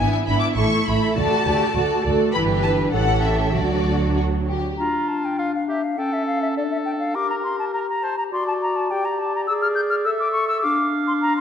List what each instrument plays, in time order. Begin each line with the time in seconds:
Already playing: viola section B3 D4, violin section G#5
0.00 violin section E4 E5, cello section E4
0.13 violin section G#5
0.26 double bass section G#1, viola section B3 D4, violin section E4 E5 B5
0.39 violin section D6
0.55 double bass section A1, viola section A3 E4, violin section A4 E5 C#6
0.86 double bass section A1, viola section A3 E4, violin section A4 E5 B5
1.16 double bass section D2, viola section A3 F#4, cello section F#4, violin section A4 D5 A5
1.46 double bass section D2, viola section A3 F#4, cello section G4, violin section A4 D5
1.75 double bass section D2, viola section A3 F#4, cello section F#4, violin section A4 D5
2.04 double bass section D2, viola section A3 F#4, cello section A4, violin section A4 D5
2.33 double bass section G1, viola section E3 E4, violin section G4 B4 B5, cello section B4
2.64 viola section D4, violin section A5
2.94 double bass section A1, viola section E3 C#4, violin section G4 A4 F#5, cello section A4
3.25 violin section E5
3.55 double bass section D2, viola section F#3 D4, cello section F#4, violin section F#4 A4 D5
4.17 violin section F#4
4.47 violin section G4
4.78 clarinet D4, oboe F4, flute A#5
5.08 flute A5
5.25 flute G5
5.39 oboe F4, flute F5
5.55 flute F5
5.68 oboe G4, flute E5
5.84 flute F5
5.98 clarinet C#4, oboe A4, flute G5
6.13 flute E5
6.26 flute F5
6.42 flute E5
6.57 clarinet D4, oboe A4, flute D5
6.71 flute E5
6.86 flute G5
6.99 flute F5
7.15 clarinet G4, oboe A#4, flute D6
7.30 flute A#5
7.43 flute C6
7.59 flute A5
7.73 oboe A#4, flute A#5
7.88 flute A#5
8.03 oboe C5, flute A5
8.18 flute A#5
8.32 clarinet F#4, oboe D5, flute C6
8.48 flute A5
8.62 flute A#5
8.76 flute A5
8.90 clarinet G4, oboe D5, flute G5
9.05 flute A#5
9.19 flute A5
9.36 flute A#5
9.47 clarinet G#4, oboe D5, flute E6
9.62 flute F6
9.75 flute G6
9.90 flute F6
10.05 clarinet A4, oboe E5, flute E6
10.19 flute D6
10.32 flute C#6
10.48 flute E6
10.61 clarinet D4, oboe F5, flute D6
11.07 flute C6
11.22 flute A#5
11.37 flute C6